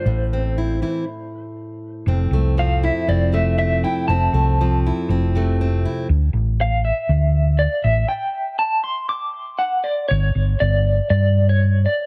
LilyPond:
<<
  \new Staff \with { instrumentName = "Clean electric guitar" } { \time 4/4 \key f \major \tempo 4 = 120 c''2. r4 | r4 f''8 e''8 d''8 e''8 e''8 g''8 | a''2 r2 | r4 f''8 e''4. d''8 e''8 |
g''4 a''8 c'''8 d'''4 fis''8 d''8 | \key g \dorian cis''4 d''4 d''8. cis''8. d''8 | }
  \new Staff \with { instrumentName = "Steel-string acoustic guitar" } { \time 4/4 \key f \major << { r8 c'8 e'8 e'8 r2 | c'8 a8 c'8 e'8 c'8 a8 c'8 e'8 | c'8 a8 c'8 e'8 c'8 a8 c'8 e'8 | r1 |
r1 | \key g \dorian r1 | } \\ { a,4. e8 r2 | f,4 f4. c4. | f,4 f4. c4. | r1 |
r1 | r1 | } >> }
  \new Staff \with { instrumentName = "Fingered electric bass" } { \clef bass \time 4/4 \key f \major a,,2 r2 | f,,8 c,4. f,,2 | f,,8 c,4. f,,2 | d,8 a,,4. d,4. a,,8 |
r1 | \key g \dorian g,,8 g,,8 g,,4 g,2 | }
>>